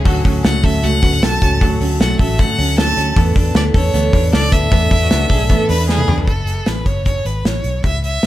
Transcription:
Already playing: A3 C#4
0.04 D2 D3 F#3 A3 C#4 F#4 A4, kick, hi-hat pedal, open hi-hat
0.24 D2 A3 C#4 F#4, kick, hi-hat pedal, open hi-hat
0.43 C#2 D3 A3 C#4 F#4 F#5, snare, hi-hat pedal, open hi-hat
0.63 D2 A3 C#4 F#4 A4 E5, kick, hi-hat pedal, open hi-hat
0.82 C#2 D3 A3 C#4 F#4 F#5, hi-hat pedal, open hi-hat
1.02 D2 A3 B3 C#4 F#4, kick, hi-hat pedal, open hi-hat
1.13 C#4
1.21 B1 D3 A3 C#4 F#4 A4 A5, snare, hi-hat pedal, open hi-hat
1.41 C#2 A3 C#4 F#4, kick, hi-hat pedal, open hi-hat
1.60 D2 D3 F#3 A3 C#4 F#4 A4, kick, hi-hat pedal, open hi-hat
1.80 D2 A3 C#4 F#4, hi-hat pedal, open hi-hat
2.00 B1 D3 A3 C#4 F#4 F#5, snare, hi-hat pedal, open hi-hat
2.19 A1 A3 C#4 F#4 A4 E5, kick, hi-hat pedal, open hi-hat
2.39 D3 A3 C#4 F#4 F#5, kick, hi-hat pedal, open hi-hat
2.57 D2 A3 C#4 F#4, hi-hat pedal, open hi-hat
2.77 D3 A3 C#4 F#4 A4 A5, snare, hi-hat pedal, open hi-hat
2.96 D2 A3 C#4 F#4, hi-hat pedal, open hi-hat
3.16 E2 E3 A3 B3 D4 A4 B4, kick, hi-hat pedal, open hi-hat
3.35 E2 D4 A4 B4, kick, hi-hat pedal, open hi-hat
3.55 D2 A3 B3 D4 A4 B4 D5, snare, hi-hat pedal, open hi-hat
3.74 E2 D4 A4 B4 C#5, kick, hi-hat pedal, open hi-hat
3.93 D2 E3 A3 B3 D4 A4 B4, hi-hat pedal, open hi-hat
4.13 E2 D4 A4 B4, kick, hi-hat pedal, open hi-hat
4.32 C#2 A3 D4 A4 B4 D5, snare, hi-hat pedal, open hi-hat
4.52 D2 D4 A4 B4 E5, kick, hi-hat pedal, open hi-hat
4.71 E2 E3 A3 B3 D4 A4 B4, kick, hi-hat pedal, open hi-hat
4.91 E2 D4 E4 A4 B4, kick, hi-hat pedal, open hi-hat
5.01 F#4
5.11 C#2 A3 B3 D4 A4 B4, snare, hi-hat pedal, open hi-hat
5.30 B1 D4 G#4 A4 B4, kick, hi-hat pedal, open hi-hat
5.49 E3 A3 B3 D4 A4 B4, kick, hi-hat pedal, open hi-hat
5.69 E2 D4 A4 B4, hi-hat pedal, open hi-hat
5.88 A3 D4 G#4 A4 B4, snare
5.98 high tom
6.08 E2 D4 A4 B4, mid tom
6.18 floor tom
6.27 F#1 A4, kick, closed hi-hat
6.47 closed hi-hat
6.66 A1 B4, snare, closed hi-hat
6.86 F#1 C#5, kick, closed hi-hat
7.05 C#5, kick, closed hi-hat
7.25 G#1 B4, closed hi-hat
7.45 A1 C#5, snare, closed hi-hat
7.64 B1, closed hi-hat
7.84 C#2 E5, kick, closed hi-hat
8.04 E5, closed hi-hat
8.23 C#2, snare, closed hi-hat

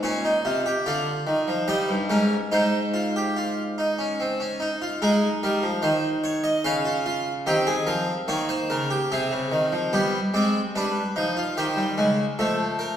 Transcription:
0.03 A#2 C#4 C#5
0.25 D#4
0.45 C3 F4
0.66 G4
0.86 D3 F4 D5
1.27 D#3
1.48 F3
1.68 G3 D#4 D#5
1.89 G2
2.10 G#2 C#4 A#4
2.52 G#2 D#4 C5
2.94 F4
3.16 G4
3.37 F4
3.78 D#4
3.98 C#4
4.20 C4
4.40 C#4
4.60 D#4
4.82 F4
5.02 G#3 D#4 G#4
5.43 G3 A#4
5.63 F3
5.82 D#3 C5
6.24 C#5
6.44 D#5
6.64 C#3 C#4 F5
6.85 F4
7.06 F4
7.46 D#3 C4 G4
7.67 G#4
7.87 F3 A#4
8.28 D#3 A#3 C#5
8.49 C5
8.70 C#3 A#4
8.90 G4
9.12 C3 C4 G#4
9.31 C#3
9.52 D#3
9.72 F3
9.93 G3 B3 G4
10.34 G#3 C4 D5
10.75 G3 D4 B4
11.16 F3 D#4
11.37 F4
11.57 D#3 G4 C5
11.77 G3
11.98 C#3 G#3
12.39 F3 A3 A4
12.79 A#4

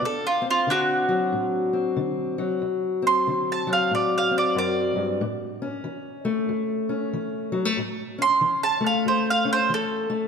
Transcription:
Already playing: D4
0.02 D2 A4
0.27 F4
0.42 C4
0.51 F4
0.67 D3 D4
0.71 F#4
1.09 F#3
1.33 A2
1.73 C4
1.97 D3
2.38 F#3
2.62 D2
3.02 C4
3.07 C6
3.27 D3
3.52 A5
3.67 F#3
3.73 F5
3.91 A2 D5
4.18 F5
4.31 C4
4.38 D5
4.55 F#2 D5
4.96 G2
5.21 A2
5.62 C#4
5.84 E3
6.25 A3
6.49 E2
6.89 C#4
7.13 E3
7.52 F#3
7.65 A3
7.77 A2
8.18 C#4 C6
8.41 E3
8.63 A5
8.81 A3
8.87 F5
9.05 E2 C5
9.30 F5
9.45 C#4
9.53 C5
9.70 E3
9.74 A4
10.10 A3

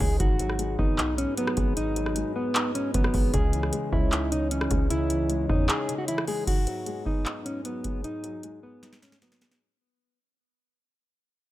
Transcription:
Already playing: C#3 E3 C#4 D#4 C#5 D#5
0.00 C#2 G#3 G#4, kick, open hi-hat
0.20 G#1 G#2 G#3 F#4 B4, kick, closed hi-hat
0.39 F#3, closed hi-hat
0.50 cross-stick
0.59 G#3, closed hi-hat
0.79 G#1 B3 D#4, kick
0.98 B1 D#4, clap, closed hi-hat
1.18 G#2 C#4, closed hi-hat
1.37 F#3 B3, closed hi-hat
1.47 cross-stick
1.57 G#1 G#3, kick, closed hi-hat
1.77 G#2 D#4, closed hi-hat
1.96 F#3, closed hi-hat
2.06 cross-stick
2.16 G#3, closed hi-hat
2.36 B3
2.55 D#4, clap, closed hi-hat
2.75 G#2 C#4, closed hi-hat
2.94 G#1 F#3 B3, kick, closed hi-hat
3.04 cross-stick
3.14 G#1 G#3, kick, open hi-hat
3.34 C#2 C#3 E3 G#4 C#5 D#5, kick, closed hi-hat
3.53 E3, closed hi-hat
3.63 cross-stick
3.73 G#3, closed hi-hat
3.93 C#2 C#4 E4, kick
4.12 D#4, clap, closed hi-hat
4.32 C#3 D#4, closed hi-hat
4.51 E3 C#4, closed hi-hat
4.61 cross-stick
4.71 C#2 G#3, kick, closed hi-hat
4.90 C#3 E4, closed hi-hat
5.10 E3, closed hi-hat
5.30 G#3, closed hi-hat
5.49 E2 C#4 D#4, kick
5.69 D#4 G#4, clap, closed hi-hat
5.89 C#3, closed hi-hat
5.98 F#4
6.08 E3 E4, closed hi-hat
6.18 cross-stick
6.28 G#3 G#4, open hi-hat
6.47 G#2 F#3 B3 F#4 G#4, kick, closed hi-hat, crash
6.67 F#3, closed hi-hat
6.86 G#3, closed hi-hat
7.06 B3 D#4, kick
7.26 D#4, clap, closed hi-hat
7.45 G#2 C#4, closed hi-hat
7.65 F#3 B3, closed hi-hat
7.84 G#3, kick, closed hi-hat
8.04 G#2 D#4, closed hi-hat
8.24 F#3, closed hi-hat
8.43 G#3, closed hi-hat
8.63 B3
8.83 D#4, snare, closed hi-hat
8.93 snare
9.02 G#2 C#4, snare, closed hi-hat
9.12 snare
9.22 F#3 B3, snare, closed hi-hat
9.32 snare
9.41 G#3, snare, closed hi-hat
9.51 snare

